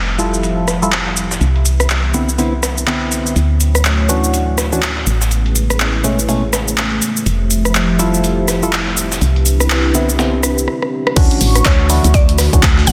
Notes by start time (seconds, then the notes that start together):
Already playing: F1 F3 A3 G4 C5 E5
0.18 G3 E4 F4 A4, closed hi-hat, cabasa
0.34 cabasa
0.43 closed hi-hat, cabasa
0.68 cross-stick, snare, closed hi-hat, cabasa
0.82 G3 E4 F4 A4, cabasa
0.92 clap, cabasa
1.07 snare
1.17 closed hi-hat, cabasa
1.31 snare, cabasa
1.41 C2 E4 B4, closed hi-hat, cabasa
1.56 closed hi-hat
1.65 closed hi-hat, cabasa
1.80 cross-stick, closed hi-hat, cabasa
1.90 clap, cabasa
2.14 D3 B3 C4 E4, closed hi-hat, cabasa
2.29 cabasa
2.38 D3 B3 C4 E4, open hi-hat, cabasa
2.63 cross-stick, snare, closed hi-hat, cabasa
2.78 cabasa
2.87 D3 B3 C4 E4, clap, cabasa
3.12 closed hi-hat, cabasa
3.27 cabasa
3.36 D2 A3 F#4 C#5, closed hi-hat, cabasa
3.60 closed hi-hat, cabasa
3.75 cross-stick, cabasa
3.85 clap, closed hi-hat, cabasa
4.09 E3 C#4 D4 F#4, closed hi-hat, cabasa
4.24 cabasa
4.34 closed hi-hat, cabasa
4.58 cross-stick, snare, closed hi-hat, cabasa
4.72 E3 C#4 D4 F#4, cabasa
4.82 clap, closed hi-hat, cabasa
4.97 snare
5.07 A1 A3 C#4 E4 G#4 B4, closed hi-hat, cabasa
5.21 snare, cabasa
5.31 closed hi-hat, cabasa
5.46 closed hi-hat
5.55 closed hi-hat, cabasa
5.70 cross-stick, closed hi-hat, cabasa
5.80 clap, closed hi-hat, cabasa
6.04 B2 G#3 A3 C#4, closed hi-hat, cabasa
6.19 cabasa
6.28 B2 G#3 A3 C#4, open hi-hat, cabasa
6.53 cross-stick, snare, closed hi-hat, cabasa
6.68 cabasa
6.77 clap, closed hi-hat, cabasa
7.02 closed hi-hat, cabasa
7.17 cabasa
7.26 F1 F3 G4 C5 E5, closed hi-hat, cabasa
7.51 closed hi-hat, cabasa
7.65 cross-stick, cabasa
7.75 clap, closed hi-hat, cabasa
7.99 G3 E4 F4 A4, closed hi-hat, cabasa
8.14 cabasa
8.24 closed hi-hat, cabasa
8.48 cross-stick, snare, closed hi-hat, cabasa
8.63 G3 E4 F4 A4, cabasa
8.73 clap, closed hi-hat, cabasa
8.87 snare
8.97 closed hi-hat, cabasa
9.12 snare, cabasa
9.21 C2 C4 D4 E4 G4 B4, closed hi-hat, cabasa
9.36 closed hi-hat
9.46 closed hi-hat, cabasa
9.60 cross-stick, closed hi-hat, cabasa
9.70 clap, cabasa
9.94 D3 B3 C4 E4, closed hi-hat, cabasa
10.09 cabasa
10.19 D3 B3 C4 E4, snare, closed hi-hat, cabasa
10.43 cross-stick, closed hi-hat, cabasa
10.58 cabasa
10.68 cross-stick
10.82 cross-stick
11.07 cross-stick
11.16 D2 D3 E3 A3 C#4 D4 F#4 C#6, kick, closed hi-hat, crash, cabasa
11.31 closed hi-hat
11.41 A1, closed hi-hat, open hi-hat, cabasa
11.56 cross-stick, closed hi-hat, cabasa
11.65 D2 C#5, kick, snare, clap, closed hi-hat, cabasa
11.89 E3 D4 E4 F#4, closed hi-hat, open hi-hat, cabasa
12.04 D2, closed hi-hat, cabasa
12.14 D5, kick, closed hi-hat, cabasa
12.29 closed hi-hat
12.38 cross-stick, snare, closed hi-hat, open hi-hat, cabasa
12.53 D2 E3 C#4 D4 F#4, kick, closed hi-hat, cabasa
12.63 kick, snare, clap, closed hi-hat, cabasa
12.78 snare
12.87 A1 C#4 G#4 B4 F#5, closed hi-hat, open hi-hat, cabasa